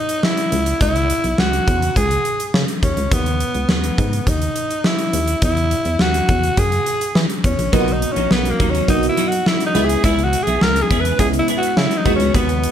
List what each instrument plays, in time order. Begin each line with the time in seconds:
Already playing: alto saxophone D#4
0.09 closed hi-hat
0.23 alto saxophone E4, snare
0.37 closed hi-hat
0.52 fm bass C#2, closed hi-hat
0.66 closed hi-hat
0.81 fm bass C#2, alto saxophone E4, kick, closed hi-hat
0.96 closed hi-hat
1.10 closed hi-hat
1.24 fm bass B1, closed hi-hat
1.38 fm bass C#2, alto saxophone F#4, snare
1.53 closed hi-hat
1.68 fm bass E2, kick, closed hi-hat
1.82 closed hi-hat
1.96 fm bass C#2, alto saxophone G#4, kick, closed hi-hat
2.11 closed hi-hat
2.25 closed hi-hat
2.40 closed hi-hat
2.54 fm bass C#3, snare
2.68 closed hi-hat
2.83 fm bass D#2, alto saxophone C#4, kick, closed hi-hat
2.97 fm bass C#2, closed hi-hat
3.12 fm bass D#2, alto saxophone B3, kick, closed hi-hat
3.26 closed hi-hat
3.40 closed hi-hat
3.55 fm bass C#2, closed hi-hat
3.69 fm bass D#2, alto saxophone B3, snare
3.84 closed hi-hat
3.98 fm bass G#2, kick, closed hi-hat
4.13 closed hi-hat
4.27 fm bass D#2, alto saxophone D#4, kick, closed hi-hat
4.42 closed hi-hat
4.56 closed hi-hat
4.71 closed hi-hat
4.84 alto saxophone E4, snare
4.99 closed hi-hat
5.13 fm bass D#2, closed hi-hat
5.28 closed hi-hat
5.42 fm bass E2, alto saxophone E4, kick, closed hi-hat
5.57 closed hi-hat
5.71 closed hi-hat
5.85 fm bass E2, closed hi-hat
5.99 fm bass D#2, alto saxophone F#4, snare
6.14 closed hi-hat
6.29 fm bass E2, kick, closed hi-hat
6.43 closed hi-hat
6.57 fm bass F#2, alto saxophone G#4, kick, closed hi-hat
6.72 closed hi-hat
6.86 closed hi-hat
7.01 closed hi-hat
7.15 fm bass E3, snare
7.30 closed hi-hat
7.44 fm bass E2, alto saxophone C#4, kick, closed hi-hat
7.59 fm bass A#1, closed hi-hat
7.72 fm bass B1, clean electric guitar F#3 A#3 D#4, fm electric piano A#3 B3 D#4 F4, alto saxophone B3, kick, closed hi-hat
7.80 fm electric piano F#4
7.87 muted clean electric guitar stroke, closed hi-hat
7.93 alto saxophone D#4
8.02 muted clean electric guitar stroke, closed hi-hat
8.12 alto saxophone C#4, clean electric guitar D#4
8.16 fm bass A#1, clean electric guitar F#3 A#3, closed hi-hat
8.31 fm bass B1, alto saxophone B3, muted clean electric guitar stroke, snare
8.45 muted clean electric guitar stroke, closed hi-hat
8.51 alto saxophone A#3
8.60 fm bass D#2, clean electric guitar F#3 A#3 D#4, kick, closed hi-hat
8.70 alto saxophone C#4, clean electric guitar D#4
8.74 clean electric guitar F#3 A#3, closed hi-hat
8.88 fm bass B1, fm electric piano A#3 B3 D#4 F#4, alto saxophone D#4, kick, closed hi-hat
9.03 muted clean electric guitar stroke, closed hi-hat
9.09 alto saxophone E4
9.17 clean electric guitar F#3 A#3 D#4, closed hi-hat
9.28 alto saxophone F#4, muted clean electric guitar stroke, closed hi-hat
9.46 alto saxophone E4, muted clean electric guitar stroke, snare
9.60 muted clean electric guitar stroke, closed hi-hat
9.66 alto saxophone D#4
9.75 fm bass C#2, fm electric piano G#3 B3 C#4 E4, clean electric guitar B3 E4 G#4, closed hi-hat
9.85 alto saxophone G#4, clean electric guitar G#4
9.89 clean electric guitar B3 E4, closed hi-hat
10.03 fm bass C#2, clean electric guitar B3 E4 G#4, alto saxophone E4, kick, closed hi-hat
10.18 muted clean electric guitar stroke, closed hi-hat
10.24 alto saxophone F#4
10.33 muted clean electric guitar stroke, closed hi-hat
10.43 fm bass B1, alto saxophone G#4, clean electric guitar G#4, closed hi-hat
10.47 clean electric guitar B3 E4
10.61 fm bass C#2, alto saxophone A#4, muted clean electric guitar stroke, snare
10.76 muted clean electric guitar stroke, closed hi-hat
10.82 alto saxophone G#4
10.90 fm bass E2, clean electric guitar B3 E4 G#4, kick, closed hi-hat
11.00 clean electric guitar G#4, alto saxophone B4
11.05 clean electric guitar B3 E4, closed hi-hat
11.19 fm bass C#2, fm electric piano G#3 B3 C#4 E4, alto saxophone G#4, kick, closed hi-hat
11.33 muted clean electric guitar stroke, closed hi-hat
11.39 alto saxophone E4
11.48 clean electric guitar B3 E4 G#4, closed hi-hat
11.58 alto saxophone F#4
11.62 muted clean electric guitar stroke, closed hi-hat
11.77 fm bass C#3, alto saxophone E4, muted clean electric guitar stroke, snare
11.91 muted clean electric guitar stroke, closed hi-hat
11.97 alto saxophone D#4
12.05 fm bass D#2, fm electric piano G#3 B3 D#4 F#4, clean electric guitar B3 F#4 G#4, kick, closed hi-hat
12.16 alto saxophone C#4, closed hi-hat
12.20 fm bass C#2, clean electric guitar B3 F#4 G#4
12.34 fm bass D#2, clean electric guitar B3 F#4 G#4, alto saxophone B3, kick, closed hi-hat
12.49 muted clean electric guitar stroke, closed hi-hat
12.63 muted clean electric guitar stroke, closed hi-hat